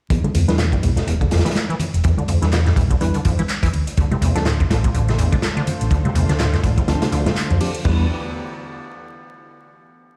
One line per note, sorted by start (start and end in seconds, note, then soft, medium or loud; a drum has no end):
0.10 0.19 E2 loud
0.10 0.18 E2 medium
0.10 kick loud
0.10 closed hi-hat medium
0.24 0.30 D3 medium
0.24 closed hi-hat soft
0.24 high conga loud
0.35 0.43 D2 medium
0.35 0.46 F2 medium
0.35 closed hi-hat medium
0.35 ride medium
0.48 0.77 E2 medium
0.48 0.52 E3 loud
0.48 0.56 G3 medium
0.48 0.56 D4 medium
0.48 0.56 E4 medium
0.48 0.56 B4 medium
0.48 snare medium
0.48 closed hi-hat medium
0.58 0.66 B2 medium
0.58 snare loud
0.58 clap loud
0.58 closed hi-hat medium
0.72 0.76 G2 loud
0.72 kick medium
0.72 closed hi-hat soft
0.83 0.99 B1 medium
0.83 0.91 E2 medium
0.83 closed hi-hat medium
0.83 ride medium
0.83 high conga medium
0.96 1.02 D2 medium
0.96 snare medium
0.96 closed hi-hat medium
1.07 1.37 E1 loud
1.07 1.15 E2 medium
1.07 closed hi-hat medium
1.21 1.27 D3 medium
1.21 kick medium
1.21 closed hi-hat soft
1.31 1.43 F2 medium
1.31 snare medium
1.31 closed hi-hat medium
1.31 ride medium
1.37 snare medium
1.37 closed hi-hat medium
1.45 1.49 E3 loud
1.45 snare medium
1.45 closed hi-hat medium
1.45 high conga medium
1.50 snare medium
1.50 closed hi-hat medium
1.55 snare loud
1.55 clap loud
1.55 closed hi-hat medium
1.70 1.75 E3 loud
1.70 closed hi-hat soft
1.79 closed hi-hat medium
1.79 ride medium
1.79 low conga medium
1.94 2.00 E1 loud
1.94 closed hi-hat soft
1.94 closed hi-hat medium
2.04 2.12 E2 medium
2.04 2.13 E2 loud
2.04 kick loud
2.04 closed hi-hat medium
2.17 2.24 D3 medium
2.17 closed hi-hat soft
2.17 high conga loud
2.28 2.37 D2 medium
2.28 2.40 F2 medium
2.28 closed hi-hat medium
2.28 ride medium
2.42 2.70 E2 medium
2.42 2.46 E3 loud
2.42 2.49 G3 medium
2.42 2.49 D4 medium
2.42 2.49 E4 medium
2.42 2.49 B4 medium
2.42 snare soft
2.42 closed hi-hat medium
2.52 2.60 B2 medium
2.52 snare loud
2.52 clap loud
2.52 closed hi-hat medium
2.66 2.70 G2 loud
2.66 snare medium
2.66 closed hi-hat soft
2.76 2.93 B1 medium
2.76 2.85 E2 medium
2.76 kick medium
2.76 closed hi-hat medium
2.76 ride medium
2.76 high conga medium
2.90 2.96 D2 medium
2.90 kick medium
2.90 closed hi-hat medium
3.01 3.09 E2 medium
3.01 3.16 G3 medium
3.01 3.16 D4 medium
3.01 3.16 E4 medium
3.01 3.16 B4 medium
3.01 closed hi-hat medium
3.14 3.20 D3 medium
3.14 closed hi-hat soft
3.25 3.34 E2 loud
3.25 3.37 F2 medium
3.25 kick medium
3.25 closed hi-hat medium
3.25 ride medium
3.39 3.42 E3 loud
3.39 closed hi-hat medium
3.39 high conga medium
3.39 low conga medium
3.49 clap loud
3.49 closed hi-hat medium
3.63 3.69 E2 medium
3.63 3.69 E3 loud
3.63 kick medium
3.63 closed hi-hat medium
3.63 closed hi-hat soft
3.73 3.82 D2 medium
3.73 ride medium
3.87 closed hi-hat medium
3.97 4.05 D2 medium
3.97 4.06 D2 loud
3.97 7.81 D3 medium
3.97 7.81 A3 medium
3.97 7.81 F4 medium
3.97 7.81 C5 medium
3.97 kick loud
3.97 closed hi-hat medium
4.11 4.17 C3 medium
4.11 closed hi-hat soft
4.11 high conga loud
4.22 4.30 C2 medium
4.22 4.33 E2 medium
4.22 closed hi-hat medium
4.22 ride medium
4.35 4.64 D2 medium
4.35 4.39 D3 loud
4.35 4.43 F3 medium
4.35 4.43 C4 medium
4.35 4.43 D4 medium
4.35 4.43 A4 medium
4.35 snare soft
4.35 closed hi-hat medium
4.46 4.54 A2 medium
4.46 snare loud
4.46 clap loud
4.46 closed hi-hat medium
4.60 4.63 F2 loud
4.60 kick loud
4.60 closed hi-hat soft
4.70 4.87 A1 medium
4.70 4.78 D2 medium
4.70 snare loud
4.70 closed hi-hat medium
4.70 ride medium
4.70 high conga medium
4.84 4.90 C2 medium
4.84 kick medium
4.84 closed hi-hat medium
4.94 5.24 A1 medium
4.94 5.02 D2 medium
4.94 closed hi-hat medium
5.08 5.14 C3 medium
5.08 snare soft
5.08 closed hi-hat soft
5.18 5.30 E2 medium
5.18 closed hi-hat medium
5.18 ride medium
5.32 5.36 D3 loud
5.32 kick medium
5.32 closed hi-hat medium
5.32 high conga loud
5.42 snare loud
5.42 clap loud
5.42 closed hi-hat medium
5.57 5.62 D3 loud
5.57 closed hi-hat soft
5.67 closed hi-hat medium
5.67 ride medium
5.67 low conga medium
5.81 5.87 A1 loud
5.81 closed hi-hat medium
5.81 closed hi-hat soft
5.91 6.00 D2 medium
5.91 5.99 D2 medium
5.91 kick loud
5.91 closed hi-hat medium
6.05 6.11 C3 medium
6.05 closed hi-hat soft
6.05 high conga medium
6.15 6.24 C2 medium
6.15 6.27 E2 medium
6.15 closed hi-hat medium
6.15 ride medium
6.29 6.58 D2 medium
6.29 6.33 D3 loud
6.29 snare soft
6.29 closed hi-hat medium
6.39 6.47 A2 medium
6.39 snare loud
6.39 clap loud
6.39 closed hi-hat medium
6.53 6.57 F2 loud
6.53 snare medium
6.53 closed hi-hat soft
6.64 6.80 A1 medium
6.64 6.71 D2 medium
6.64 kick medium
6.64 closed hi-hat medium
6.64 ride medium
6.64 high conga medium
6.78 6.83 C2 medium
6.78 kick loud
6.78 closed hi-hat medium
6.88 6.96 D2 medium
6.88 6.97 D2 medium
6.88 7.03 F3 medium
6.88 7.03 C4 medium
6.88 7.03 D4 medium
6.88 7.03 A4 medium
6.88 snare loud
6.88 closed hi-hat medium
7.02 7.08 C3 medium
7.02 snare loud
7.02 closed hi-hat medium
7.02 closed hi-hat soft
7.11 7.27 D2 loud
7.11 7.21 D2 loud
7.11 snare soft
7.11 closed hi-hat medium
7.11 ride medium
7.26 7.32 D3 medium
7.26 snare loud
7.26 closed hi-hat medium
7.26 high conga loud
7.26 low conga medium
7.36 clap loud
7.36 closed hi-hat medium
7.50 7.59 D2 medium
7.50 7.57 F2 medium
7.50 closed hi-hat soft
7.61 7.70 F3 medium
7.61 7.70 C4 medium
7.61 7.70 D4 medium
7.61 7.70 G4 loud
7.61 open hi-hat medium
7.61 ride medium
7.75 closed hi-hat medium
7.85 8.07 E2 medium
7.85 8.08 E2 loud
7.85 8.07 E3 medium
7.85 8.03 G3 medium
7.85 8.07 B3 medium
7.85 8.03 D4 medium
7.85 8.03 E4 medium
7.85 8.07 G4 medium
7.85 8.04 B4 medium
7.85 8.08 D5 medium
7.85 kick loud
7.85 crash medium